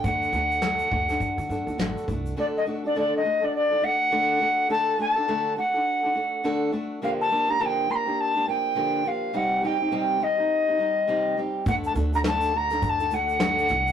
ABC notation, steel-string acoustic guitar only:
X:1
M:4/4
L:1/16
Q:"Swing 16ths" 1/4=103
K:Dphr
V:1 name="Steel-string acoustic guitar"
[D,A,D^FA]2 [A,DFA]2 [D,A,DFA]2 [A,DFA] [DFA]2 [DFA] [A,DFA] [DFA] [D,A,DFA]2 [A,DFA]2 | [D,A,D^FA]2 [A,DFA] [DFA] [D,A,DFA]2 [A,DFA] [DFA]2 [DFA] [A,DFA]2 [D,A,DFA]2 [A,DFA]2 | [D,A,D^FA]2 [A,DFA] [DFA] [D,A,DFA]2 [A,DFA] [DFA]2 [DFA] [A,DFA]2 [D,A,DFA]2 [A,DFA]2 | [D,F,B,DG]2 [F,B,DG] [B,DG] [D,F,B,DG]2 [F,B,DG] [B,DG]2 [B,DG] [F,B,DG]2 [D,F,B,DG]2 [F,B,DG]2 |
[C,G,CEG]2 [G,CEG] [CEG] [C,G,CEG]2 [G,CEG] [CEG]2 [CEG] [G,CEG]2 [C,G,CEG]2 [G,CEG]2 | [D,A,D^FA]2 [A,DFA] [DFA] [D,A,DFA]2 [A,DFA] [DFA]2 [DFA] [A,DFA]2 [D,A,DFA]2 [A,DFA]2 |]